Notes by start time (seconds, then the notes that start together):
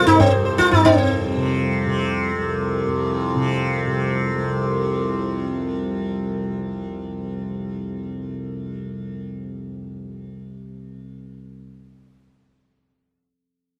Already playing: C2 F2 C3
0.07 D#4, tabla tin, tabla ge
0.20 C4, tabla na, tabla ge
0.28 F2 C5
0.45 C5
0.58 F4, tabla ke
0.71 D#4, tabla tin, tabla ge
0.85 F2 C4, tabla na, tabla ge
1.37 C3
1.87 C3
2.37 C2
2.87 F2
3.36 C3
3.87 C3
4.36 C2